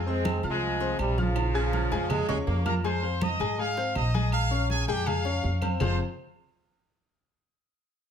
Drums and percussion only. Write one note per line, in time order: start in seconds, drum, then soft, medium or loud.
0.07 high conga soft
0.25 high conga loud
0.25 low agogo medium
0.25 claves medium
0.43 high conga soft
0.43 low agogo medium
0.62 high conga soft
0.80 high conga soft
0.80 low agogo medium
0.99 high conga soft
0.99 low agogo loud
0.99 claves medium
1.18 high conga medium
1.36 high conga soft
1.36 high timbale loud
1.36 low agogo loud
1.36 claves medium
1.55 high conga soft
1.73 high conga medium
1.73 low agogo medium
1.92 high conga soft
1.92 low agogo medium
2.10 high conga soft
2.10 low conga medium
2.10 low timbale medium
2.10 low agogo loud
2.10 claves medium
2.29 high conga soft
2.29 low conga medium
2.29 low timbale loud
2.29 low agogo medium
2.47 high conga soft
2.47 low timbale medium
2.66 high conga medium
2.66 low timbale medium
2.66 low agogo loud
2.66 claves medium
2.84 high conga soft
2.84 low agogo medium
3.03 high conga soft
3.21 high conga loud
3.21 low agogo loud
3.21 claves medium
3.40 high conga soft
3.40 low agogo medium
3.59 high conga soft
3.77 high conga soft
3.77 low agogo medium
3.95 high conga soft
3.95 low timbale medium
3.95 low agogo loud
3.95 claves medium
4.14 high conga medium
4.32 high conga soft
4.32 low agogo loud
4.32 claves medium
4.51 high conga soft
4.70 high conga medium
4.70 low agogo medium
4.88 high conga soft
4.88 low agogo medium
5.06 high conga soft
5.06 low conga medium
5.06 low agogo loud
5.06 claves medium
5.25 high conga soft
5.25 low agogo medium
5.43 high conga soft
5.43 low timbale medium
5.62 high conga medium
5.62 low agogo loud
5.62 claves medium
5.80 low conga loud
5.80 low timbale loud
5.80 claves medium